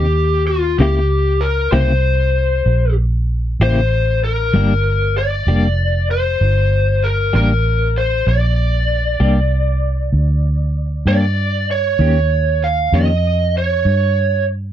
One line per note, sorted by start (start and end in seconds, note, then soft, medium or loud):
0.00 0.76 D#2 medium
0.00 0.43 G4 medium
0.47 0.78 F4 medium
0.78 1.70 C#2 medium
0.78 0.98 C#3 medium
0.78 0.99 A#3 medium
0.78 0.99 E4 medium
0.78 1.43 G4 medium
0.78 0.99 G4 medium
1.41 1.72 A#4 medium
1.72 2.63 C2 medium
1.72 1.92 C#3 medium
1.72 1.92 A#3 medium
1.72 1.92 E4 medium
1.72 1.91 G4 medium
1.72 2.93 C5 medium
2.66 3.57 A#1 medium
3.60 4.50 A1 medium
3.60 3.80 C#3 medium
3.60 3.80 A#3 medium
3.60 3.79 E4 medium
3.60 3.79 G4 medium
3.60 4.24 C5 medium
4.24 5.17 A#4 medium
4.53 5.44 G1 medium
4.53 4.72 G3 medium
4.53 4.73 A#3 medium
4.53 4.73 D4 medium
4.53 4.73 G4 medium
5.18 6.10 D5 medium
5.47 6.37 F1 medium
5.47 5.67 G3 medium
5.47 5.67 A#3 medium
5.47 5.66 D4 medium
5.47 5.66 G4 medium
6.11 7.06 C5 medium
6.41 7.31 G1 medium
7.04 7.35 A#4 medium
7.33 8.24 A1 medium
7.33 7.53 G3 soft
7.33 7.52 A#3 medium
7.33 7.52 D4 medium
7.33 7.52 G4 medium
7.33 7.99 A#4 medium
7.98 8.28 C5 medium
8.27 9.17 A#1 medium
8.27 11.07 D5 medium
9.20 10.10 C2 medium
9.20 9.39 G3 medium
9.20 9.39 A#3 medium
9.20 9.39 D4 medium
9.20 9.39 G4 medium
10.13 11.03 D2 medium
11.06 11.96 G2 medium
11.06 11.26 G3 soft
11.06 11.26 A#3 soft
11.06 11.26 D4 medium
11.06 11.25 G4 medium
11.06 11.71 D5 medium
11.71 12.66 C#5 medium
11.99 12.89 D#2 medium
11.99 12.18 D#3 medium
11.99 12.19 A#3 medium
11.99 12.19 C#4 medium
11.99 12.19 G4 medium
12.64 12.95 F5 medium
12.92 13.83 F2 medium
12.92 13.13 D#3 soft
12.92 13.12 A#3 soft
12.92 13.12 C#4 medium
12.92 13.12 G4 medium
12.92 13.57 D#5 medium
13.57 14.45 C#5 medium
13.85 14.73 G2 medium